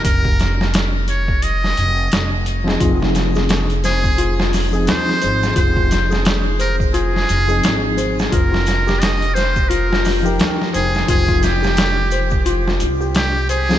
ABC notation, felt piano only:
X:1
M:4/4
L:1/16
Q:"Swing 16ths" 1/4=87
K:Ebmix
V:1 name="Felt piano"
z16 | F F2 A z2 c z F F2 A z2 c z | F F2 A z2 c z F F2 A z2 c z | F F2 G z2 c z F F2 G z2 c z |
F F2 G z2 c z F F2 G z2 c z |]